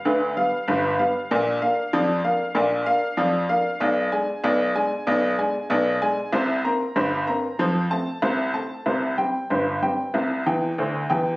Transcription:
X:1
M:2/4
L:1/8
Q:1/4=95
K:Gmix
V:1 name="Upright piano"
[D,,D,B] [G,B,f] [G,,,G,,B] [G,B,f] | [K:Cmix] [B,,,B,,d] [B,Df] [F,,F,d] [B,Df] | [B,,,B,,d] [B,Df] [F,,F,d] [B,Df] | [=B,,,=B,,d] [^G,D^g] [B,,,B,,d] [G,Dg] |
[=B,,,=B,,d] [^G,D^g] [B,,,B,,d] [G,Dg] | [C,,C,c] [B,Cb] [G,,,G,,c] [B,Cb] | [F,,F,c] [A,Ca] [C,,C,c] [A,Ca] | [C,,C,c] [G,Cg] [G,,,G,,c] [G,Cg] |
[C,,C,c] [E,,E,g] [D,,D,c] [E,,E,Gg] |]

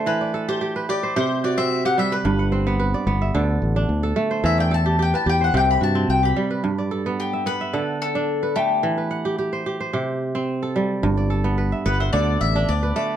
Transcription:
X:1
M:4/4
L:1/16
Q:1/4=109
K:G
V:1 name="Mandolin"
B3 c3 d2 c2 d e2 f e B- | B4- B z8 z3 | e g a2 g a g f g b a2 g b3 | z4 G2 B4 A4 G2- |
G8- G2 z6 | z6 B c d2 e2 d2 d2 |]
V:2 name="Kora"
c d A2 G B2 c G2 F3 G2 B- | B f C2 B d2 e A3 z2 A2 c- | c d A2 G B2 c G2 F3 G2 B- | B d A3 e2 e A3 z2 B3 |
z B f2 G c2 c G3 z2 A3 | z d A2 B e2 e A3 z2 B3 |]
V:3 name="Kora"
E,2 z G2 z G2 C,2 z C2 z G,2 | G,,2 z B,2 z B,2 D,2 z D2 z A,2 | E,2 z G2 z G2 C,2 z C2 z G,2 | G,,2 z B,2 z B,2 D,2 z D2 z A,2 |
E,2 z G2 z G2 C,2 z C2 z G,2 | G,,2 z B,2 z B,2 D,2 z D2 z A,2 |]
V:4 name="Fingered electric bass" clef=bass
z16 | G,,,6 G,,,2 D,,2 A,,,2 D,,2 z2 | E,,6 E,,2 C,,2 G,,2 C,,2 z2 | z16 |
z16 | G,,,6 G,,,2 D,,2 A,,,2 D,,2 z2 |]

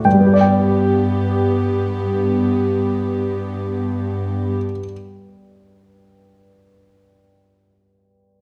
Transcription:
X:1
M:12/8
L:1/8
Q:3/8=29
K:G
V:1 name="Grand piano"
[G,,G,B,Gdg]12 |]
V:2 name="Viola section"
[B,G]12 |]
V:3 name="Cello section" clef=bass
G,,12 |]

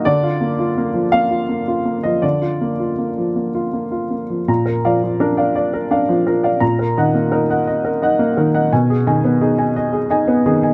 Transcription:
X:1
M:6/8
L:1/16
Q:3/8=57
K:Bbphr
V:1 name="Upright piano"
=d6 f4- f e | =d8- d2 z2 | b B [=df] F, B [df] d B [df] F, B [df] | b B [eg] B, B [eg] e B [eg] B, B [eg] |
a A [ea] C A [ea] e A [ea] C A [ea] |]
V:2 name="Upright piano"
=D, F B, F B, F, B, F B, F B, F, | =D, F B, F B, F, B, F B, F B, F, | B,,2 F,2 =D3 z D2 F,2 | B,,2 E,2 E3 z E2 E,2 |
C,2 E,2 E3 z E2 E,2 |]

